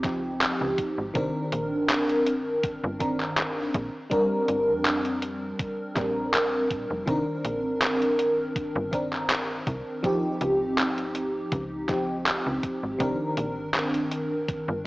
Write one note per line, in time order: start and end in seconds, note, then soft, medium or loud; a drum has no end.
0.00 0.55 C#2 medium
0.00 0.03 F3 medium
0.00 1.10 F3 medium
0.00 0.04 C4 medium
0.00 1.11 C4 medium
0.00 0.05 D#4 medium
0.00 0.06 G4 medium
0.04 1.11 D#4 medium
0.04 1.12 G4 medium
0.04 kick loud
0.04 clap soft
0.04 closed hi-hat medium
0.41 clap loud
0.41 closed hi-hat medium
0.61 0.75 C#2 medium
0.78 kick medium
0.78 closed hi-hat medium
0.98 1.12 G#1 medium
1.14 1.31 C2 medium
1.14 2.96 D#3 medium
1.14 2.96 C4 medium
1.14 2.97 D4 medium
1.14 2.97 A#4 loud
1.14 kick loud
1.14 closed hi-hat medium
1.52 1.74 A#1 medium
1.52 closed hi-hat medium
1.72 2.58 G1 medium
1.89 clap loud
1.89 closed hi-hat medium
2.09 closed hi-hat soft
2.26 closed hi-hat medium
2.63 2.79 G1 soft
2.63 kick loud
2.63 closed hi-hat medium
2.83 3.69 G1 loud
2.99 3.72 D#3 medium
2.99 3.72 C4 medium
2.99 3.72 D4 medium
2.99 3.73 A#4 medium
2.99 kick medium
2.99 closed hi-hat medium
3.20 clap soft
3.37 clap loud
3.37 closed hi-hat medium
3.74 3.90 A#1 loud
3.74 kick loud
3.74 closed hi-hat medium
4.10 5.92 G3 medium
4.10 5.92 C4 medium
4.10 5.93 D4 medium
4.10 5.93 A#4 loud
4.10 kick loud
4.10 closed hi-hat medium
4.48 4.70 G1 medium
4.48 closed hi-hat medium
4.68 5.54 F2 medium
4.85 clap loud
4.85 closed hi-hat medium
5.05 closed hi-hat soft
5.22 closed hi-hat medium
5.59 kick loud
5.59 closed hi-hat medium
5.95 6.72 A#1 medium
5.95 7.03 G3 medium
5.95 7.03 C4 medium
5.95 7.04 D4 medium
5.95 7.04 A#4 medium
5.95 kick loud
5.95 clap soft
5.95 closed hi-hat medium
6.34 clap loud
6.34 closed hi-hat medium
6.71 6.87 A#2 medium
6.71 kick medium
6.71 closed hi-hat medium
6.91 7.04 F1 medium
7.06 7.24 C2 loud
7.06 8.88 D#3 medium
7.06 8.89 C4 medium
7.06 8.89 D4 medium
7.06 8.90 A#4 loud
7.06 kick loud
7.06 closed hi-hat medium
7.45 7.66 A#1 medium
7.45 closed hi-hat medium
7.65 8.50 G1 medium
7.82 clap loud
7.82 closed hi-hat medium
8.02 closed hi-hat soft
8.19 closed hi-hat medium
8.56 8.72 G1 soft
8.56 kick loud
8.56 closed hi-hat medium
8.76 9.61 G1 loud
8.91 9.99 D#3 medium
8.91 10.00 C4 medium
8.91 10.00 D4 medium
8.91 10.01 A#4 medium
8.91 kick medium
8.91 closed hi-hat medium
9.13 clap soft
9.30 clap loud
9.30 closed hi-hat medium
9.67 9.83 C2 loud
9.67 kick loud
9.67 closed hi-hat medium
10.03 11.84 F3 medium
10.03 11.85 C4 medium
10.03 11.85 D#4 medium
10.03 11.86 G4 loud
10.03 kick loud
10.03 closed hi-hat medium
10.41 10.63 C#2 medium
10.41 closed hi-hat medium
10.61 11.47 G#1 medium
10.78 clap loud
10.78 closed hi-hat medium
10.98 closed hi-hat soft
11.15 closed hi-hat medium
11.52 12.40 C#2 medium
11.52 kick loud
11.52 closed hi-hat medium
11.88 12.95 F3 medium
11.88 12.96 C4 medium
11.88 12.96 D#4 medium
11.88 12.97 G4 medium
11.88 kick loud
11.88 clap soft
11.88 closed hi-hat medium
12.26 clap loud
12.26 closed hi-hat medium
12.46 12.60 C#2 medium
12.63 kick medium
12.63 closed hi-hat medium
12.83 12.97 G#1 medium
12.99 13.16 C2 loud
12.99 14.81 D#3 medium
12.99 14.81 C4 medium
12.99 14.82 D4 medium
12.99 14.82 A#4 loud
12.99 kick loud
12.99 closed hi-hat medium
13.37 13.59 A#1 medium
13.37 closed hi-hat medium
13.57 14.43 G1 loud
13.74 clap loud
13.74 closed hi-hat medium
13.94 closed hi-hat soft
14.11 closed hi-hat medium
14.48 14.64 G1 soft
14.48 kick loud
14.48 closed hi-hat medium
14.68 14.87 G1 loud